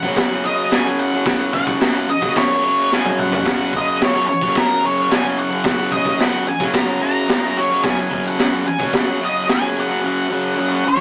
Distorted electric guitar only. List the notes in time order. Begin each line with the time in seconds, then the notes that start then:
0.04 C#3 F#3
0.17 F#2 C#3 F#3
0.31 C#3 F#3
0.45 F#2 C#3 F#3
0.72 F#2 C#3 F#3
0.85 C#3 F#3
1.12 C#3 F#3
1.26 F#2 C#3 F#3
1.52 F#2 C#3 F#3
1.80 F#2 C#3 F#3
1.94 C#3 F#3
2.09 muted distorted electric guitar stroke
2.21 C#3 F#3
2.35 F#2 C#3 F#3
2.48 F#3
2.52 C#3
2.63 F#2 C#3 F#3
2.91 F#2 C#3 F#3
3.06 C#3 F#3
3.32 C#3 F#3
3.46 F#2 C#3 F#3
3.73 F#2 C#3 F#3
4.01 F#2 C#3 F#3
4.15 C#3 F#3
4.29 muted distorted electric guitar stroke
4.42 C#3 F#3
4.56 F#2 C#3 F#3
4.68 C#3 F#3
4.81 F#2 C#3 F#3
5.09 F#2 C#3 F#3
5.23 C#3 F#3
5.50 C#3 F#3
5.64 F#2 C#3 F#3
5.91 F#2 C#3 F#3
6.19 F#2 C#3 F#3
6.32 C#3 F#3
6.47 muted distorted electric guitar stroke
6.59 C#3 F#3
6.73 F#2 C#3 F#3
6.86 C#3 F#3
7.00 F#2 C#3 F#3
7.28 F#2 C#3 F#3
7.43 C#3 F#3
7.69 C#3 F#3
7.83 F#2 C#3 F#3
8.10 F#2 C#3 F#3
8.38 F#2 C#3 F#3
8.51 C#3 F#3
8.66 muted distorted electric guitar stroke
8.78 C#3 F#3
8.92 F#2 C#3 F#3
9.06 C#3 F#3
9.21 F#2 C#3 F#3
9.47 F#2 C#3 F#3
9.61 C#3 F#3
9.88 C#3 F#3
10.02 F#2 C#3 F#3
10.29 F#2 C#3 F#3
10.56 F#2 C#3 F#3
10.69 C#3 F#3
10.86 muted distorted electric guitar stroke
10.97 F#3